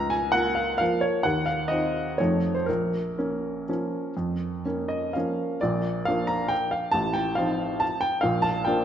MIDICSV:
0, 0, Header, 1, 2, 480
1, 0, Start_track
1, 0, Key_signature, -5, "minor"
1, 0, Tempo, 451467
1, 1330, Time_signature, 3, 2, 24, 8
1, 1811, Tempo, 490196
1, 5651, Tempo, 435098
1, 5652, Key_signature, -2, "major"
1, 9204, End_track
2, 0, Start_track
2, 0, Title_t, "Upright piano"
2, 0, Program_c, 0, 0
2, 0, Note_on_c, 0, 37, 47
2, 0, Note_on_c, 0, 82, 73
2, 97, Control_c, 0, 64, 127
2, 107, Note_on_c, 0, 80, 66
2, 114, Note_off_c, 0, 82, 0
2, 337, Note_on_c, 0, 78, 74
2, 351, Note_off_c, 0, 37, 0
2, 355, Note_off_c, 0, 80, 0
2, 362, Note_on_c, 0, 58, 33
2, 365, Note_on_c, 0, 65, 40
2, 585, Note_on_c, 0, 77, 57
2, 597, Note_off_c, 0, 78, 0
2, 812, Note_off_c, 0, 58, 0
2, 812, Note_off_c, 0, 77, 0
2, 814, Note_off_c, 0, 65, 0
2, 828, Note_on_c, 0, 77, 70
2, 858, Note_on_c, 0, 53, 35
2, 859, Note_on_c, 0, 58, 35
2, 863, Note_on_c, 0, 65, 35
2, 871, Control_c, 0, 64, 0
2, 1075, Note_on_c, 0, 73, 61
2, 1082, Note_off_c, 0, 77, 0
2, 1288, Note_off_c, 0, 53, 0
2, 1289, Note_off_c, 0, 58, 0
2, 1291, Note_off_c, 0, 65, 0
2, 1311, Note_on_c, 0, 78, 64
2, 1319, Note_off_c, 0, 73, 0
2, 1333, Note_on_c, 0, 39, 43
2, 1517, Control_c, 0, 64, 127
2, 1549, Note_on_c, 0, 77, 60
2, 1557, Note_off_c, 0, 78, 0
2, 1786, Note_on_c, 0, 75, 61
2, 1798, Note_off_c, 0, 39, 0
2, 1802, Note_off_c, 0, 77, 0
2, 1812, Note_on_c, 0, 60, 33
2, 1818, Note_on_c, 0, 63, 34
2, 2244, Note_off_c, 0, 60, 0
2, 2247, Note_off_c, 0, 63, 0
2, 2272, Note_off_c, 0, 75, 0
2, 2278, Note_on_c, 0, 73, 53
2, 2295, Control_c, 0, 64, 0
2, 2301, Note_on_c, 0, 41, 43
2, 2302, Note_on_c, 0, 53, 30
2, 2307, Note_on_c, 0, 57, 30
2, 2312, Note_on_c, 0, 63, 32
2, 2478, Control_c, 0, 64, 127
2, 2636, Note_on_c, 0, 72, 49
2, 2645, Note_off_c, 0, 73, 0
2, 2740, Note_off_c, 0, 53, 0
2, 2742, Note_off_c, 0, 57, 0
2, 2745, Note_off_c, 0, 63, 0
2, 2750, Note_on_c, 0, 70, 46
2, 2763, Note_off_c, 0, 72, 0
2, 2764, Note_off_c, 0, 41, 0
2, 2778, Note_on_c, 0, 34, 38
2, 2781, Control_c, 0, 64, 0
2, 2999, Control_c, 0, 64, 127
2, 3246, Note_off_c, 0, 34, 0
2, 3260, Note_on_c, 0, 58, 30
2, 3263, Note_on_c, 0, 61, 33
2, 3711, Note_off_c, 0, 58, 0
2, 3712, Note_off_c, 0, 61, 0
2, 3754, Note_on_c, 0, 53, 30
2, 3761, Note_on_c, 0, 58, 29
2, 3761, Note_on_c, 0, 61, 34
2, 3763, Control_c, 0, 64, 0
2, 4185, Note_off_c, 0, 53, 0
2, 4188, Note_off_c, 0, 58, 0
2, 4188, Note_off_c, 0, 61, 0
2, 4223, Note_on_c, 0, 41, 39
2, 4400, Control_c, 0, 64, 127
2, 4685, Note_off_c, 0, 41, 0
2, 4699, Note_on_c, 0, 58, 29
2, 4704, Note_on_c, 0, 61, 33
2, 4926, Note_on_c, 0, 75, 49
2, 5147, Note_off_c, 0, 58, 0
2, 5149, Note_off_c, 0, 61, 0
2, 5169, Note_on_c, 0, 77, 42
2, 5175, Note_off_c, 0, 70, 0
2, 5177, Note_off_c, 0, 75, 0
2, 5195, Control_c, 0, 64, 0
2, 5197, Note_on_c, 0, 53, 29
2, 5198, Note_on_c, 0, 58, 29
2, 5202, Note_on_c, 0, 61, 32
2, 5619, Note_off_c, 0, 53, 0
2, 5619, Note_off_c, 0, 58, 0
2, 5621, Note_off_c, 0, 61, 0
2, 5635, Note_on_c, 0, 74, 59
2, 5644, Note_off_c, 0, 77, 0
2, 5652, Note_on_c, 0, 34, 47
2, 5653, Note_on_c, 0, 46, 40
2, 5842, Control_c, 0, 64, 127
2, 6124, Note_on_c, 0, 77, 67
2, 6126, Note_off_c, 0, 34, 0
2, 6126, Note_off_c, 0, 46, 0
2, 6131, Note_off_c, 0, 74, 0
2, 6148, Note_on_c, 0, 53, 36
2, 6156, Note_on_c, 0, 62, 41
2, 6158, Note_on_c, 0, 58, 36
2, 6366, Note_on_c, 0, 82, 64
2, 6378, Note_off_c, 0, 77, 0
2, 6600, Note_on_c, 0, 79, 73
2, 6622, Note_off_c, 0, 82, 0
2, 6644, Control_c, 0, 64, 0
2, 6850, Note_on_c, 0, 77, 55
2, 6858, Note_off_c, 0, 79, 0
2, 7068, Note_off_c, 0, 53, 0
2, 7072, Note_off_c, 0, 62, 0
2, 7073, Note_off_c, 0, 58, 0
2, 7074, Note_on_c, 0, 81, 74
2, 7096, Note_off_c, 0, 77, 0
2, 7101, Note_on_c, 0, 45, 41
2, 7102, Note_on_c, 0, 33, 47
2, 7291, Control_c, 0, 64, 127
2, 7317, Note_on_c, 0, 79, 62
2, 7325, Note_off_c, 0, 81, 0
2, 7558, Note_on_c, 0, 77, 64
2, 7566, Note_off_c, 0, 33, 0
2, 7566, Note_off_c, 0, 45, 0
2, 7571, Note_off_c, 0, 79, 0
2, 7580, Note_on_c, 0, 53, 35
2, 7585, Note_on_c, 0, 60, 38
2, 7586, Note_on_c, 0, 63, 41
2, 8049, Note_on_c, 0, 81, 69
2, 8060, Note_off_c, 0, 77, 0
2, 8088, Control_c, 0, 64, 0
2, 8278, Note_on_c, 0, 79, 70
2, 8299, Note_off_c, 0, 81, 0
2, 8494, Note_off_c, 0, 53, 0
2, 8496, Note_off_c, 0, 60, 0
2, 8497, Note_off_c, 0, 63, 0
2, 8502, Note_on_c, 0, 77, 70
2, 8523, Note_off_c, 0, 79, 0
2, 8525, Note_on_c, 0, 34, 48
2, 8526, Note_on_c, 0, 46, 43
2, 8735, Note_on_c, 0, 81, 69
2, 8750, Note_off_c, 0, 77, 0
2, 8752, Control_c, 0, 64, 127
2, 8983, Note_on_c, 0, 79, 61
2, 8986, Note_off_c, 0, 34, 0
2, 8987, Note_off_c, 0, 46, 0
2, 8991, Note_off_c, 0, 81, 0
2, 9007, Note_on_c, 0, 53, 38
2, 9014, Note_on_c, 0, 62, 42
2, 9017, Note_on_c, 0, 58, 37
2, 9204, Note_off_c, 0, 53, 0
2, 9204, Note_off_c, 0, 58, 0
2, 9204, Note_off_c, 0, 62, 0
2, 9204, Note_off_c, 0, 79, 0
2, 9204, End_track
0, 0, End_of_file